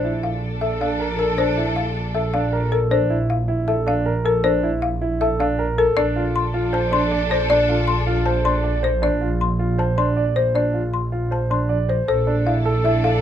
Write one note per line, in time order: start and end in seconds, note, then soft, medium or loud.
0.00 5.85 A#1 medium
0.00 0.10 D4 medium
0.00 2.68 D4 medium
0.00 2.68 A4 medium
0.00 0.10 C5 medium
0.04 0.29 E4 medium
0.23 0.48 F5 medium
0.61 0.86 A4 medium
0.61 0.86 E5 medium
0.81 1.06 D4 medium
0.81 1.06 F5 medium
1.00 1.25 A#4 medium
1.19 1.44 A4 medium
1.19 1.44 A#4 medium
1.38 1.63 D4 medium
1.38 1.63 C5 medium
1.57 1.82 E4 medium
1.76 2.01 F5 medium
2.15 2.40 A4 medium
2.15 2.39 E5 medium
2.34 2.59 D4 medium
2.34 2.59 F5 medium
2.53 2.78 A#4 medium
2.72 2.97 A4 medium
2.72 2.97 A#4 medium
2.91 3.16 D4 medium
2.91 3.16 C5 medium
3.10 3.35 E4 medium
3.30 3.54 F5 medium
3.48 3.73 E4 medium
3.68 3.92 A4 medium
3.68 3.92 E5 medium
3.87 4.11 D4 medium
3.87 4.12 F5 medium
4.06 4.31 A#4 medium
4.25 4.50 A4 medium
4.25 4.50 A#4 medium
4.44 4.69 D4 medium
4.44 4.69 C5 medium
4.63 4.88 E4 medium
4.82 5.07 F5 medium
5.01 5.26 E4 medium
5.21 5.45 A4 medium
5.21 5.45 E5 medium
5.40 5.64 D4 medium
5.40 5.65 F5 medium
5.59 5.83 A#4 medium
5.78 6.03 A4 medium
5.78 6.03 A#4 medium
5.96 11.96 A#1 medium
5.96 6.22 D4 medium
5.96 8.80 D4 medium
5.96 8.80 A4 medium
5.96 6.22 D5 loud
6.16 6.41 F4 medium
6.36 6.60 C6 medium
6.54 6.79 F4 medium
6.73 6.98 C5 medium
6.73 6.98 A5 medium
6.92 7.17 D4 medium
6.92 7.17 C6 medium
7.11 7.36 D5 medium
7.30 7.55 C5 medium
7.30 7.56 C5 medium
7.50 7.74 D4 medium
7.50 7.75 D5 loud
7.69 7.94 F4 medium
7.88 8.13 C6 medium
8.07 8.32 F4 medium
8.26 8.51 C5 medium
8.26 8.51 A5 medium
8.45 8.70 D4 medium
8.45 8.70 C6 medium
8.64 8.89 D5 medium
8.83 9.08 C5 medium
8.83 9.09 C5 medium
9.02 9.27 D4 medium
9.02 9.28 D5 medium
9.21 9.46 F4 medium
9.41 9.66 C6 medium
9.59 9.85 F4 medium
9.78 10.04 C5 medium
9.78 10.04 A5 medium
9.98 10.23 D4 medium
9.98 10.23 C6 medium
10.17 10.42 D5 medium
10.36 10.61 C5 medium
10.55 10.80 D4 medium
10.55 10.80 D5 medium
10.74 10.99 F4 medium
10.94 11.18 C6 medium
11.12 11.37 F4 medium
11.31 11.56 C5 medium
11.31 11.57 A5 medium
11.50 11.76 D4 medium
11.50 11.76 C6 medium
11.69 11.95 D5 medium
11.89 12.14 C5 medium
11.89 12.07 C5 medium
12.08 13.21 A#1 medium
12.08 13.21 D4 medium
12.08 13.21 A4 medium
12.08 12.33 A4 medium
12.08 12.33 C5 medium
12.27 12.52 D4 medium
12.46 12.71 E4 medium
12.46 12.71 F5 medium
12.65 12.90 A4 medium
12.84 13.09 E4 medium
12.84 13.10 E5 medium
13.03 13.21 A4 medium
13.03 13.21 F5 medium